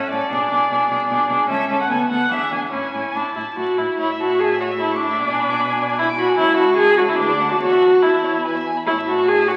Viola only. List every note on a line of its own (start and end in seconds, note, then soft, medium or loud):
0.00 0.11 C#4 soft
0.12 0.31 C#4 soft
0.31 0.50 D4 medium
0.51 0.70 D4 soft
0.71 0.90 D4 soft
0.91 1.10 D4 soft
1.10 1.29 D4 soft
1.30 1.49 D4 soft
1.50 1.70 C#4 soft
1.70 1.90 C#4 soft
1.90 2.10 B3 soft
2.10 2.30 B3 soft
2.31 2.51 D4 soft
2.52 2.71 D4 soft
2.72 2.93 C#4 soft
2.94 3.14 C#4 soft
3.15 3.23 D4 soft
3.36 3.44 E4 soft
3.56 3.79 F#4 soft
3.78 3.99 E4 soft
3.99 4.07 E4 medium
4.20 4.41 F#4 medium
4.40 4.59 G#4 medium
4.60 4.68 F#4 medium
4.80 4.99 E4 medium
5.00 5.97 D4 medium
5.99 6.06 E4 medium
6.18 6.37 F#4 medium
6.38 6.57 E4 medium
6.57 6.77 F#4 medium
6.77 6.97 G#4 medium
6.98 7.02 F#4 medium
7.09 7.18 E4 medium
7.18 7.49 D4 medium
7.50 7.54 F#4 medium
7.60 8.04 F#4 medium
8.02 8.45 E4 medium
8.87 8.95 E4 medium
9.07 9.29 F#4 medium
9.28 9.49 G#4 medium
9.48 9.57 F#4 medium